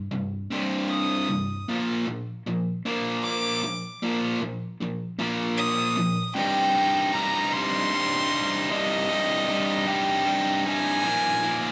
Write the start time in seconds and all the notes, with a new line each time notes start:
0.11 C2 G2
0.50 C2 G2 C3
0.89 D#6
1.29 C2 G2
1.68 A#2 F3 A#3
2.07 A#2 F3
2.47 A#2 F3
2.86 A#2 F3 A#3
3.24 D6
3.64 A#2 F3
4.03 A#2 F3 A#3
4.41 A#2 F3
4.80 A#2 F3
5.19 A#2 F3 A#3
5.57 D#6
5.97 A#2 F3
6.35 C2 G2 C3 G3 D#4 G5
6.75 C3 G3 D#4
7.12 G2 C3 G3 D#4 A#5
7.53 C3 G3 D#4 C6
7.92 G2 C3 G3 D#4
8.30 C3 G3 D#4
8.69 C2 G2 C3 G3 D#4 D#5
9.09 C3 G3 D#4
9.47 G2 C3 G3 D#4
9.86 C3 G3 D#4 G5
10.26 G2 C3 G3 D#4
10.65 C3 G3 D#4 G#5
11.04 A#2 F3 A#3 D#4 F4 A#4
11.43 A#3 D#4 F4 A#4